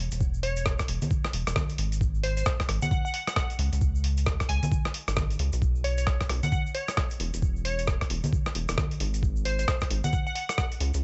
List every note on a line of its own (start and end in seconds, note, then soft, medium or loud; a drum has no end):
0.11 0.76 E1 loud
0.11 closed hi-hat medium
0.11 shaker medium
0.21 kick loud
0.21 shaker medium
0.34 shaker soft
0.43 0.88 C#5 loud
0.43 open hi-hat loud
0.56 closed hi-hat medium
0.56 shaker medium
0.65 kick loud
0.65 cross-stick loud
0.65 shaker medium
0.79 kick medium
0.79 cross-stick medium
0.79 closed hi-hat soft
0.79 shaker soft
0.88 1.00 E1 loud
0.88 open hi-hat loud
1.02 closed hi-hat medium
1.02 high conga medium
1.02 shaker medium
1.10 kick loud
1.10 shaker medium
1.24 cross-stick medium
1.24 shaker soft
1.33 1.45 E1 loud
1.33 open hi-hat loud
1.47 1.54 E1 loud
1.47 cross-stick medium
1.47 closed hi-hat medium
1.47 shaker medium
1.56 kick loud
1.56 cross-stick loud
1.56 high conga medium
1.56 shaker medium
1.69 closed hi-hat soft
1.69 shaker soft
1.78 2.44 G#1 loud
1.78 open hi-hat loud
1.92 closed hi-hat medium
1.92 shaker medium
2.01 kick loud
2.01 shaker medium
2.15 shaker soft
2.23 2.32 C5 medium
2.23 open hi-hat loud
2.37 2.43 C5 medium
2.37 closed hi-hat medium
2.37 shaker medium
2.46 kick loud
2.46 cross-stick loud
2.46 shaker medium
2.60 kick medium
2.60 cross-stick medium
2.60 closed hi-hat soft
2.60 shaker soft
2.69 2.80 G#1 loud
2.69 cross-stick medium
2.69 open hi-hat loud
2.82 2.88 F#5 medium
2.82 closed hi-hat medium
2.82 high conga medium
2.82 shaker medium
2.91 3.00 F#5 medium
2.91 kick loud
2.91 shaker medium
3.05 3.11 F#5 medium
3.05 shaker soft
3.14 3.23 F#5 medium
3.14 open hi-hat loud
3.27 3.33 F#5 medium
3.27 cross-stick medium
3.27 closed hi-hat medium
3.27 shaker medium
3.36 3.45 F#5 medium
3.36 kick loud
3.36 cross-stick loud
3.36 shaker medium
3.50 closed hi-hat medium
3.50 shaker soft
3.59 3.70 C#2 loud
3.59 open hi-hat loud
3.73 4.37 C#2 medium
3.73 closed hi-hat medium
3.73 shaker medium
3.81 kick loud
3.81 shaker medium
3.95 shaker soft
4.04 open hi-hat loud
4.17 closed hi-hat medium
4.17 shaker medium
4.26 kick loud
4.26 cross-stick loud
4.26 shaker medium
4.40 kick medium
4.40 cross-stick medium
4.40 closed hi-hat soft
4.40 shaker soft
4.49 4.61 C#2 loud
4.49 5.13 G#5 medium
4.49 open hi-hat loud
4.63 closed hi-hat medium
4.63 high conga medium
4.63 shaker medium
4.72 kick loud
4.72 shaker medium
4.85 cross-stick medium
4.85 shaker soft
4.94 open hi-hat loud
5.08 5.37 G#1 medium
5.08 cross-stick medium
5.08 closed hi-hat medium
5.08 shaker medium
5.16 kick loud
5.16 cross-stick loud
5.16 high conga medium
5.16 shaker medium
5.30 closed hi-hat medium
5.30 shaker soft
5.39 5.51 C#2 loud
5.39 open hi-hat loud
5.53 6.17 B1 loud
5.53 closed hi-hat medium
5.53 shaker medium
5.62 kick loud
5.62 shaker medium
5.75 shaker soft
5.84 5.93 C#5 medium
5.84 open hi-hat loud
5.98 6.04 C#5 medium
5.98 closed hi-hat medium
5.98 shaker medium
6.07 kick loud
6.07 cross-stick loud
6.07 shaker medium
6.21 kick medium
6.21 cross-stick medium
6.21 closed hi-hat soft
6.21 shaker soft
6.29 6.41 B1 loud
6.29 cross-stick medium
6.29 open hi-hat loud
6.43 6.49 F#5 medium
6.43 closed hi-hat medium
6.43 high conga medium
6.43 shaker medium
6.52 6.61 F#5 medium
6.52 kick loud
6.52 shaker medium
6.66 shaker soft
6.75 7.25 C#5 loud
6.75 open hi-hat loud
6.88 cross-stick medium
6.88 closed hi-hat medium
6.88 shaker medium
6.97 kick loud
6.97 cross-stick loud
6.97 shaker medium
7.10 closed hi-hat medium
7.10 shaker soft
7.20 7.31 E1 loud
7.20 open hi-hat loud
7.34 7.98 E1 medium
7.34 closed hi-hat medium
7.34 shaker medium
7.42 kick loud
7.42 shaker medium
7.56 shaker soft
7.65 8.10 C#5 medium
7.65 open hi-hat loud
7.79 closed hi-hat medium
7.79 shaker medium
7.87 kick loud
7.87 cross-stick loud
7.87 shaker medium
8.01 kick medium
8.01 cross-stick medium
8.01 closed hi-hat soft
8.01 shaker soft
8.10 8.22 E1 loud
8.10 open hi-hat loud
8.24 closed hi-hat medium
8.24 high conga medium
8.24 shaker medium
8.33 kick loud
8.33 shaker medium
8.46 cross-stick medium
8.46 shaker soft
8.55 8.67 E1 medium
8.55 open hi-hat loud
8.69 8.76 E1 loud
8.69 cross-stick medium
8.69 closed hi-hat medium
8.69 shaker medium
8.78 kick loud
8.78 cross-stick loud
8.78 high conga medium
8.78 shaker medium
8.91 closed hi-hat medium
8.91 shaker soft
9.00 9.66 G#1 loud
9.00 open hi-hat loud
9.14 closed hi-hat medium
9.14 shaker medium
9.23 kick loud
9.23 shaker medium
9.36 shaker soft
9.45 9.54 C5 medium
9.45 open hi-hat loud
9.59 9.65 C5 medium
9.59 closed hi-hat medium
9.59 shaker medium
9.68 kick loud
9.68 cross-stick loud
9.68 shaker medium
9.81 kick medium
9.81 cross-stick medium
9.81 closed hi-hat soft
9.81 shaker soft
9.91 10.02 G#1 loud
9.91 open hi-hat loud
10.04 10.10 F#5 medium
10.04 closed hi-hat medium
10.04 high conga medium
10.04 shaker medium
10.13 10.22 F#5 medium
10.13 kick loud
10.13 shaker medium
10.26 10.32 F#5 medium
10.26 shaker soft
10.35 10.44 F#5 medium
10.35 open hi-hat loud
10.49 10.55 F#5 medium
10.49 cross-stick medium
10.49 closed hi-hat medium
10.49 shaker medium
10.58 10.67 F#5 medium
10.58 kick loud
10.58 cross-stick loud
10.58 shaker medium
10.72 closed hi-hat medium
10.72 shaker soft
10.80 10.92 C#2 loud
10.80 open hi-hat loud
10.94 11.04 C#2 loud
10.94 closed hi-hat medium
10.94 shaker medium